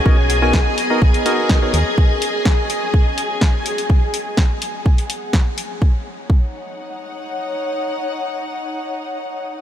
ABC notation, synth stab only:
X:1
M:4/4
L:1/16
Q:1/4=125
K:Ebm
V:1 name="Synth stab"
[=B,^D^F^A^d] z2 [B,DFA_a] z3 [B,DF^Ad] z2 [B,DFAd]3 [B,DFA_d] z2 | z16 | z16 | z16 |
z16 |]